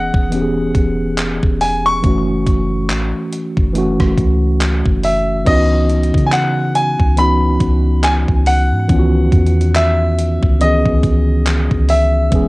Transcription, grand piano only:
Already playing: F#5
1.61 G#5
1.86 C#6
5.05 E5
5.47 D#5
6.26 G#5
6.33 F#5
6.75 G#5
7.18 B5
8.04 G#5
8.47 F#5
9.76 E5
10.61 D#5
11.90 E5

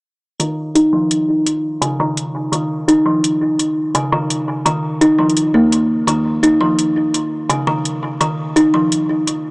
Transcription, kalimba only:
0.40 D#3
0.75 D#4
0.93 F3
1.82 C#3
2.00 D#3
2.52 D#3
2.88 D#4
3.06 F3
3.95 C#3
4.12 D#3
4.66 D#3
5.01 D#4
5.19 F3
5.54 A#3
6.07 D#3
6.43 D#4
6.61 F3
7.49 C#3
7.67 D#3
8.21 D#3
8.56 D#4
8.74 F3

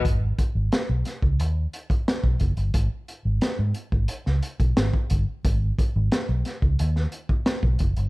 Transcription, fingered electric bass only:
0.05 G#1
0.55 G#1
0.89 B1
1.23 C#2
1.40 D#2
2.24 B1
2.41 F#1
2.57 G1
2.74 G#1
3.25 G#1
3.59 G#2
3.92 G#1
4.27 C#2
4.60 B1
4.77 G#1
5.11 G1
5.45 G#1
5.96 G#1
6.29 B1
6.62 C#2
6.80 D#2
7.63 B1
7.81 F#1
7.97 G1

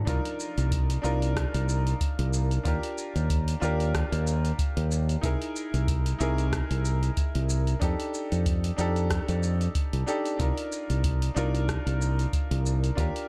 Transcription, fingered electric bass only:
0.07 C2
0.58 C2
1.04 C2
1.54 C2
2.19 C2
2.65 D#2
3.16 D#2
3.62 D#2
4.12 D#2
4.77 D#2
5.23 C2
5.74 C2
6.20 C2
6.71 C2
7.35 C2
7.82 F2
8.32 F2
8.78 F2
9.29 F2
9.93 C2
10.39 C2
10.90 C2
11.36 C2
11.86 C2
12.51 C2
12.98 D#2

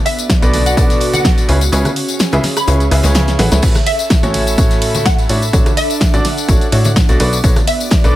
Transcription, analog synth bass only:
0.42 B1
0.77 B1
1.49 C#2
1.72 C#2
2.33 C#2
2.68 C#2
2.91 C#2
3.04 C#2
3.39 A1
3.52 C#2
3.63 A1
4.23 A1
4.58 A1
5.29 A1
5.53 A1
6.14 A1
6.49 A1
6.72 A2
7.09 B1
7.20 B1
7.44 B1
8.04 B1

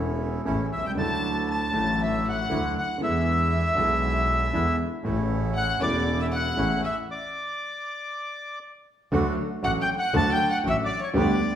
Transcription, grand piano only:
Already playing: E1 E2 C#3 E3 A3 E4
0.45 A1 A2 C#3 E3 A3 E4
0.77 B1
0.83 C2
0.90 C#2
0.95 D2 D3 F#3 A3 E4
1.71 A1 A2 D3 F#3 A3
1.76 E4
2.50 D2 D3 F#3 A3 E4
2.98 E2 D3 E3 G#3 B3
3.02 E4
3.75 B1 B2 D3 G#3 B3 E4
4.53 E2 D3 E3 G#3 B3 E4
5.02 A1 A2 C#3 E3 A3 E4
5.79 E1 E2 C#3 E3 A3
5.83 E4
6.56 A1 A2 C#3 E3 A3 E4
9.12 D2 D3 F#3 A3 F#4
9.62 A1 A2 D3 F#3 A3 F#4
10.14 D2 D3 F#3 A3 F#4
10.64 A1 A2 D3 F#3 A3 F#4
11.14 D2 D3 G3 B3 G4

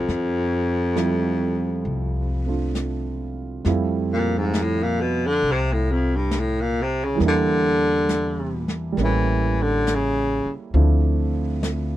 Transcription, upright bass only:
0.08 F2
1.85 C2
3.65 F2
5.42 C2
7.20 E2
8.97 A1
10.46 muted upright bass stroke
10.74 D2

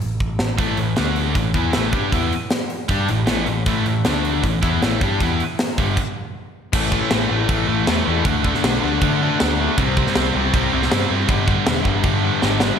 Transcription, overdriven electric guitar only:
0.59 A2 E3 A3
0.79 A2 E3
0.98 D3 A3 D4
1.36 A2 E3
1.55 E3 B3 E4
1.74 A2 E3 A3
1.94 G3 D4 G4
2.13 E3 B3 E4
2.90 G3 D4 G4
3.10 A2 E3
3.28 A2 E3 A3
3.48 A2 E3
3.66 A2 E3 A3
3.87 A2 E3
4.05 D3 A3 D4
4.44 A2 E3
4.64 E3 B3 E4
4.82 A2 E3 A3
5.03 G3 D4 G4
5.23 E3 B3 E4
5.78 G2 D3 G3
6.73 A2 E3 A3
6.92 A2 E3 A3
7.12 A2 E3 A3
7.30 A2 E3 A3
7.49 A2 E3 A3
7.68 A2 E3 A3
7.88 A2 E3 A3
8.07 A2 E3 A3
8.26 D3 A3 D4
8.45 D3 A3 D4
8.63 D3 A3 D4
8.83 D3 A3 D4
9.01 D3 A3 D4
9.21 D3 A3 D4
9.40 D3 A3 D4
9.60 D3 A3 D4
9.78 C3 G3 C4
9.97 C3 G3 C4
10.16 C3 G3 C4
10.36 C3 G3 C4
10.55 C3 G3 C4
10.73 C3 G3 C4
10.92 C3 G3 C4
11.10 C3 G3 C4
11.29 G2 D3 G3
11.48 G2 D3 G3
11.66 G2 D3 G3
11.86 G2 D3 G3
12.05 G2 D3 G3
12.24 G2 D3 G3
12.43 G2 D3 G3
12.63 G2 D3 G3

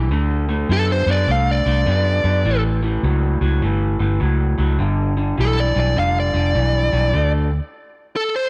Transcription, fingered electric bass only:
Already playing: B1
0.11 D2
0.69 F#2
1.06 F#2
1.28 C2
1.66 C2
1.86 F#2
2.24 F#2
2.45 A1
3.03 C#2
3.41 C#2
3.62 G1
4.00 G1
4.21 C#2
4.58 C#2
4.79 G1
5.38 B1
5.76 B1
5.96 F1
6.34 F1
6.55 B1
6.93 B1
7.14 D2

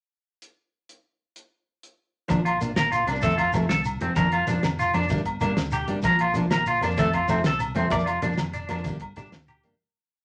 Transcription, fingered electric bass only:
2.30 A#1
2.61 A#1
2.77 A#1
3.06 C2
3.23 F1
3.54 F1
3.68 C2
3.99 F1
4.16 F1
4.46 F1
4.62 F1
4.94 F2
5.10 G1
5.41 G1
5.56 D2
5.88 G1
6.03 A#1
6.35 A#1
6.51 A#1
6.82 F2
6.97 F1
7.29 F1
7.44 C2
7.75 F1
7.91 F1
8.23 F1
8.37 F1
8.69 F2
8.85 G1
9.16 G1
9.33 D2
9.65 G1

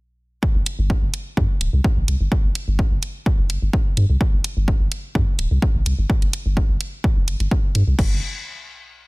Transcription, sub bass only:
0.55 G1
0.79 G1
1.02 G1
1.37 G2
1.61 D1
1.73 C2
1.97 A1
2.08 C2
2.21 G1
2.44 G1
2.68 G1
2.91 G1
3.39 F1
3.50 G1
3.62 G1
3.97 G2
4.10 C2
4.33 G1
4.57 G1
4.81 G1
5.15 G2
5.39 D1
5.51 C2
5.75 A1
5.86 C2
5.99 G1
6.22 G1
6.46 G1
6.69 G1
7.16 F1
7.28 G1
7.40 G1
7.75 G2
7.87 C2
7.99 G1

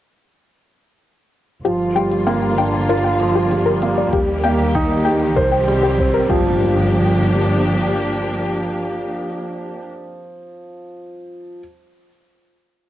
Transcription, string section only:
1.65 D3 G3 A#3 F4
4.13 D#3 G4
5.36 C4 G4
6.29 F3 A#3 D4 G4

